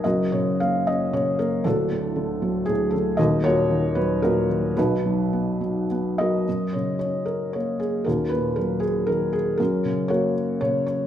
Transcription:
<<
  \new Staff \with { instrumentName = "Felt piano" } { \time 3/4 \key fis \major \tempo 4 = 116 << { dis''8 cis''8 eis''8 dis''8 cis''8 ais'8 | a'2 gis'8 a'8 | dis''8 cis''4 b'8 ais'4 | b'2 r8 dis''8~ |
dis''8 cis''8 cis''8 ais'8 cis''8 gis'8 | ais'8 b'8 ais'8 gis'8 ais'8 gis'8 | ais'4 cis''4 cis''8 cis''8 | } \\ { <fis' ais'>4. r4. | <d' fis'>2 r4 | <fis' ais'>8 <fis' ais'>4. <dis' fis'>4 | <dis' fis'>2 r8 <fis' ais'>8~ |
<fis' ais'>4 r2 | <cis' fis'>4. r4. | <cis' fis'>4 <fis' ais'>4. r8 | } >> }
  \new Staff \with { instrumentName = "Felt piano" } { \clef bass \time 3/4 \key fis \major <fis,, fis,>8 cis8 ais8 cis'8 cis8 ais8 | <d,, d,>8 a,8 d8 fis8 a,8 d8 | <dis,, dis,>8 ais,8 dis8 fis8 ais,8 dis8 | <b,, b,>8 fis8 b8 fis8 b8 fis8 |
fis,8 cis8 cis'4 ais4 | dis,8 ais,8 fis4 dis4 | fis,8 cis8 ais4 cis4 | }
>>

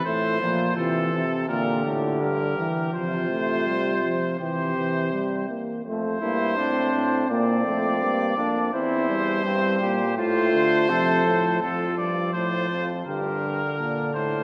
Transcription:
<<
  \new Staff \with { instrumentName = "Trumpet" } { \time 4/4 \key f \major \tempo 4 = 83 c''4 a'4 bes'8 r8 bes'4 | c''2 c''4. r8 | c''2 d''2 | c''2 c''2 |
a'8 d''8 c''4 bes'4. c''8 | }
  \new Staff \with { instrumentName = "Flugelhorn" } { \time 4/4 \key f \major f'2 g'2 | f'2 g'4. r8 | r8 e'8 d'4 c'4. d'8 | e'4 c'8 g'8 f'4 a'4 |
f'4 f'4 g'4 d'4 | }
  \new Staff \with { instrumentName = "Trombone" } { \clef bass \time 4/4 \key f \major a8 f8 e8 r8 d4. e8 | f8 a8 g8 f8 e8 e8 g8 bes8 | a8 bes8 c'4 bes8 a8 bes8 bes8 | c'8 g4. a4 f4 |
f2 d2 | }
  \new Staff \with { instrumentName = "Euphonium" } { \clef bass \time 4/4 \key f \major a,8 bes,8 c8 c8 bes,8 a,8 g,8 r8 | c2 c4. r8 | f,8 g,8 a,8 a,8 bes,8 f,8 g,8 f,8 | e,4 g,8 bes,8 a,8 d8 c8 a,8 |
f,8 g,8 a,8 f,8 g,4 bes,8 a,8 | }
>>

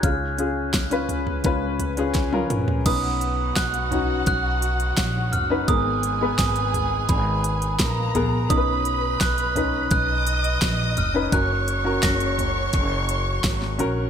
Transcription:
<<
  \new Staff \with { instrumentName = "Glockenspiel" } { \time 4/4 \key b \lydian \tempo 4 = 85 eis'''2. r4 | dis'''4 fis'''4 fis'''4. eis'''8 | dis'''4 dis'''4 b''4. r8 | dis'''4 fis'''4 fis'''4 r8 eis'''8 |
fis'''4 ais'''2 r4 | }
  \new Staff \with { instrumentName = "Violin section" } { \time 4/4 \key b \lydian r1 | <fis' fis''>1 | <gis' gis''>2. <ais ais''>4 | <b' b''>2 <dis'' dis'''>2 |
<cis'' cis'''>1 | }
  \new Staff \with { instrumentName = "Grand piano" } { \time 4/4 \key b \lydian <cis' eis' gis'>8 <cis' eis' gis'>8. <cis' eis' b'>8. <cis' eis' b'>8. <cis' eis' gis'>8 <cis' eis' ais'>8. | <cis' dis' b'>4~ <cis' dis' b'>16 r16 <cis' dis' fis'>4.~ <cis' dis' fis'>16 r8 <cis' dis' b'>16 | <b gis' ais'>8. <b gis' b'>4.~ <b gis' b'>16 r4 <b gis' ais'>8 | <cis' dis' ais' b'>4~ <cis' dis' ais' b'>16 r16 <cis' dis' b'>4.~ <cis' dis' b'>16 r8 <cis' dis' b'>16 |
<cis' fis' ais'>8. <cis' fis' ais'>4.~ <cis' fis' ais'>16 r4 <cis' fis' ais'>8 | }
  \new Staff \with { instrumentName = "Grand piano" } { \clef bass \time 4/4 \key b \lydian cis4. r2 r8 | b,4. r2 r8 | gis,4. r2 r8 | b,4. r2 r8 |
r1 | }
  \new Staff \with { instrumentName = "Upright bass" } { \clef bass \time 4/4 \key b \lydian cis,2 cis,4. ais,,8 | b,,4 b,,4 b,,4 ais,,8 fis,,8 | gis,,4 gis,,4 gis,,4 ais,,8 ais,,8 | b,,4 b,,4 b,,4 ais,,8 eis,,8 |
fis,,4 fis,,4 fis,,4 gis,,8 ais,,8 | }
  \new DrumStaff \with { instrumentName = "Drums" } \drummode { \time 4/4 <hh bd>8 hh8 <hh bd sn>16 hh16 <hh tomfh>16 tomfh16 <hh bd>8 <hh tomfh>16 hh16 <hh bd sn>16 tommh16 <hh toml>16 tomfh16 | <cymc hh bd>8 hh8 <hh bd sn>16 hh16 <hh tomfh>8 <hh bd>8 hh16 hh16 <hh bd sn>8 <hh tomfh>8 | <hh bd>8 hh8 <hh bd sn>16 hh16 <hh tomfh>8 <hh bd>8 hh16 hh16 <hh bd sn>8 <hh tomfh>8 | <hh bd>8 hh8 <hh bd sn>16 hh16 <hh tomfh>8 <hh bd>8 hh16 hh16 <hh bd sn>8 <hh tomfh>8 |
<hh bd>8 hh8 <hh bd sn>16 hh16 <hh tomfh>8 <hh bd>8 hh8 <hh bd sn>16 sn16 hh8 | }
>>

